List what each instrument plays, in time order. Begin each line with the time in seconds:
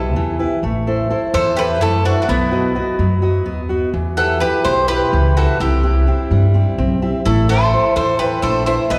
Already playing: upright bass B1, steel-string acoustic guitar B2 E4 G4 B4, mandolin E4, bouzouki A4
0.15 upright bass E2, steel-string acoustic guitar E3
0.39 steel-string acoustic guitar E4 G4 B4
0.63 upright bass A1, steel-string acoustic guitar A3
0.87 steel-string acoustic guitar E4 A4 C5
1.10 steel-string acoustic guitar E4 A4 C5
1.34 upright bass E2, steel-string acoustic guitar E3, mandolin A4, bouzouki C5
1.57 steel-string acoustic guitar E4 A4 C5, mandolin G4, bouzouki B4
1.81 upright bass F#2, steel-string acoustic guitar A3, mandolin E4, bouzouki A4
2.04 mandolin D4, steel-string acoustic guitar E4 A4 C5, bouzouki F#4
2.22 mandolin D4, bouzouki F#4
2.28 upright bass B1, steel-string acoustic guitar B3, mandolin B3, bouzouki E4
2.52 steel-string acoustic guitar F#4 B4 D#5
2.75 steel-string acoustic guitar F#4 B4 D#5
2.99 upright bass F#2, steel-string acoustic guitar F#3
3.22 steel-string acoustic guitar F#4 B4 D#5
3.46 upright bass D#2, steel-string acoustic guitar B3
3.69 steel-string acoustic guitar F#4 B4 D#5
3.93 upright bass E2, steel-string acoustic guitar E3
4.17 steel-string acoustic guitar E4 G4 B4, mandolin F#4, bouzouki A4
4.40 steel-string acoustic guitar E4 G4 B4, mandolin G4, bouzouki B4
4.64 upright bass B1, steel-string acoustic guitar B2, mandolin G4, bouzouki C5
4.88 steel-string acoustic guitar E4 G4 B4, mandolin G4, bouzouki B4
5.13 upright bass C#2, steel-string acoustic guitar E3
5.36 steel-string acoustic guitar E4 G4 B4, mandolin F#4, bouzouki A4
5.60 upright bass C2, steel-string acoustic guitar C3, mandolin E4, bouzouki G4
5.83 steel-string acoustic guitar C4 E4 G4
6.07 steel-string acoustic guitar C4 E4 G4
6.31 upright bass G2, steel-string acoustic guitar G3
6.54 steel-string acoustic guitar C4 E4 G4
6.78 upright bass B1, steel-string acoustic guitar C4
7.02 steel-string acoustic guitar C4 E4 G4
7.25 upright bass A1, steel-string acoustic guitar A3, mandolin E4, bouzouki A4
7.49 steel-string acoustic guitar E4 A4 C5, mandolin A4, bouzouki C5
7.73 steel-string acoustic guitar E4 A4 C5
7.96 upright bass E2, steel-string acoustic guitar E3, mandolin A4, bouzouki C5
8.19 steel-string acoustic guitar E4 A4 C5, mandolin G4, bouzouki B4
8.42 upright bass A#1, steel-string acoustic guitar A3, mandolin A4, bouzouki C5
8.66 steel-string acoustic guitar E4 A4 C5, mandolin C5, bouzouki E5
8.90 upright bass B1, steel-string acoustic guitar B3, mandolin B4, bouzouki D#5